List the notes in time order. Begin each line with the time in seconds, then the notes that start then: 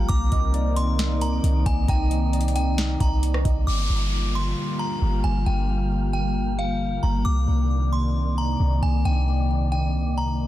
0.09 C2 D#3 A#3 C4 D#4 D5 A#5 D6, kick, closed hi-hat
0.32 C2 D#5, kick, closed hi-hat
0.54 D5, closed hi-hat
0.76 C6, closed hi-hat
0.99 D#4, snare, closed hi-hat
1.21 A#5, closed hi-hat
1.44 C2, closed hi-hat
1.66 C2 D#5 G#5, kick, closed hi-hat
1.88 C2 G5 A#5, kick, closed hi-hat
2.10 D#5, closed hi-hat
2.33 D5, closed hi-hat
2.41 closed hi-hat
2.48 closed hi-hat
2.56 G5, closed hi-hat
2.78 D#4, snare, closed hi-hat
3.00 C2 A#5, kick, closed hi-hat
3.23 closed hi-hat
3.34 cross-stick
3.44 C2 D#5, kick, closed hi-hat
3.67 G1 D3 G3 A#3 F4 G4 F5 D6, downlifter
3.90 G1
4.35 C6
4.79 A#5
5.02 G1
5.24 G1 G#5
5.46 G1 G5
6.13 G5
6.59 F5
7.03 G1 A#5
7.25 C2 C3 D#3 D#4 D5 D6
7.48 C2
7.93 C6
8.38 A#5
8.60 C2
8.82 C2 G#5
9.05 C2 G5
9.72 G5
10.18 A#5